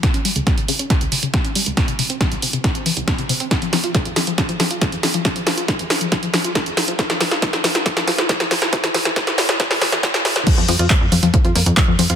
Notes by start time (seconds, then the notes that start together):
0.03 C#3, kick, snare, closed hi-hat
0.14 C#4, closed hi-hat
0.25 G3, open hi-hat
0.36 C#2, closed hi-hat
0.47 C#3, kick, snare, closed hi-hat
0.58 C#3, closed hi-hat
0.68 C#3, open hi-hat
0.79 C#4, closed hi-hat
0.90 G3, kick, snare, closed hi-hat
1.01 C#2, closed hi-hat
1.12 C#3, open hi-hat
1.23 C#3, closed hi-hat
1.34 C#3, kick, snare, closed hi-hat
1.45 C#4, closed hi-hat
1.55 G3, open hi-hat
1.66 C#2, closed hi-hat
1.77 C3, kick, snare, closed hi-hat
1.88 C3, closed hi-hat
1.99 C3, open hi-hat
2.10 C4, closed hi-hat
2.21 E3, kick, snare, closed hi-hat
2.32 C2, closed hi-hat
2.42 C3, open hi-hat
2.53 C3, closed hi-hat
2.64 C3, kick, snare, closed hi-hat
2.75 C4, closed hi-hat
2.86 E3, open hi-hat
2.97 C2, closed hi-hat
3.08 C3, kick, snare, closed hi-hat
3.19 C3, closed hi-hat
3.29 C3, open hi-hat
3.40 C4, closed hi-hat
3.51 F3, kick, snare, closed hi-hat
3.62 F3, closed hi-hat
3.73 F3, snare, open hi-hat
3.84 F4, closed hi-hat
3.95 A#3, kick, snare, closed hi-hat
4.05 F2, closed hi-hat
4.16 F3, snare, open hi-hat
4.27 F3, closed hi-hat
4.38 F3, kick, snare, closed hi-hat
4.49 F3, closed hi-hat
4.60 F3, snare, open hi-hat
4.71 F4, closed hi-hat
4.82 A#3, kick, snare, closed hi-hat
4.92 F2, closed hi-hat
5.03 F3, snare, open hi-hat
5.14 F3, closed hi-hat
5.25 F3, kick, snare, closed hi-hat
5.36 F3, closed hi-hat
5.47 F3, snare, open hi-hat
5.58 F4, closed hi-hat
5.68 A#3, kick, snare, closed hi-hat
5.79 F2, closed hi-hat
5.90 F3, snare, open hi-hat
6.01 F3, closed hi-hat
6.12 F3, kick, snare, closed hi-hat
6.23 F3, closed hi-hat
6.34 F3, snare, open hi-hat
6.44 F4, closed hi-hat
6.55 A#3, kick, snare, closed hi-hat
6.66 F2, closed hi-hat
6.77 F3, snare, open hi-hat
6.88 F3, closed hi-hat
6.99 F3, kick, snare, closed hi-hat
7.10 F3, snare, closed hi-hat
7.21 F3, snare, open hi-hat
7.31 F4, snare, closed hi-hat
7.42 F3, kick, snare, closed hi-hat
7.53 F3, snare, closed hi-hat
7.64 F3, snare, open hi-hat
7.75 F4, snare, closed hi-hat
7.86 F3, kick, snare, closed hi-hat
7.97 F3, snare, closed hi-hat
8.08 F3, snare, open hi-hat
8.18 F4, snare, closed hi-hat
8.29 F3, kick, snare, closed hi-hat
8.40 F3, snare, closed hi-hat
8.51 F3, snare, open hi-hat
8.62 F4, snare, closed hi-hat
8.73 E3, kick, snare, closed hi-hat
8.84 E3, snare, closed hi-hat
8.94 E3, snare, open hi-hat
9.05 E3, snare, closed hi-hat
9.16 E3, kick, snare, closed hi-hat
9.27 E3, snare, closed hi-hat
9.38 E3, snare, open hi-hat
9.49 E3, snare, closed hi-hat
9.60 E3, kick, snare, closed hi-hat
9.71 E3, snare, open hi-hat
9.82 E3, snare, open hi-hat
9.92 E3, snare, closed hi-hat
10.03 E3, kick, snare, closed hi-hat
10.14 E3, snare, closed hi-hat
10.25 E3, snare, open hi-hat
10.36 E3, snare, closed hi-hat
10.47 F3, kick, closed hi-hat, crash
10.58 F2 F3
10.68 F2 F3, open hi-hat
10.79 F2 F4, closed hi-hat
10.90 A#3, kick, clap, closed hi-hat
11.01 F2
11.12 F2 F3, open hi-hat
11.23 F2 F3, closed hi-hat
11.34 F3, kick, closed hi-hat
11.45 F2 F4, closed hi-hat
11.55 F2 A#3, open hi-hat
11.66 F2, closed hi-hat
11.77 F3, kick, clap, closed hi-hat
11.88 F2 F3
11.99 F2 F3, open hi-hat
12.10 F2 F4, closed hi-hat